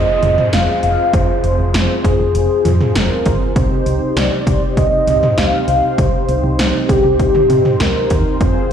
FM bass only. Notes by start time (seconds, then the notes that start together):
0.23 F1
0.53 F1
0.83 F1
1.13 F1
1.44 F1
1.59 F1
1.74 F1
2.04 F1
2.20 F1
2.35 F1
2.65 F2
2.95 F1
3.26 G#1
3.56 C2
3.86 C2
4.17 C2
4.47 C2
4.77 C2
5.07 C2
5.38 C2
5.68 C2
5.98 C2
6.29 C2
6.44 C2
6.59 C2
6.89 C2
7.04 C2
7.19 C2
7.50 C3
7.80 C2
8.11 D#2
8.41 F1